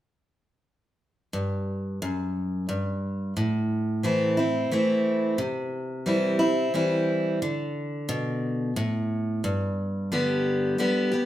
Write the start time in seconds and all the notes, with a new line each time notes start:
1.33 G2
2.02 F#2
2.69 G2
3.37 A2
4.03 E3 A3 C4 E4
4.37 C4 E4
4.71 E3 A3 C4 E4
5.38 C3
6.06 E3 G3 C4 E4
6.39 C4 E4
6.74 E3 G3 C4 E4
7.42 D3
8.09 B2
8.76 A2
9.44 G2
10.12 D3 G3 B3 G4
10.78 D3 G3 B3 G4
11.12 B3 G4